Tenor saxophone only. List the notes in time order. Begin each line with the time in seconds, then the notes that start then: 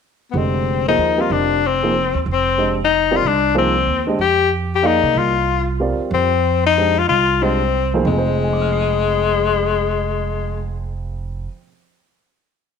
0.31 B3
0.38 C4
0.88 D#4
1.21 F4
1.32 D4
1.67 C4
2.32 C4
2.84 D#4
3.16 F4
3.27 D4
3.58 C4
4.21 G4
4.75 G4
4.86 D#4
5.18 F4
6.14 C4
6.67 D#4
6.98 F4
7.09 F4
7.43 C4
8.07 G#3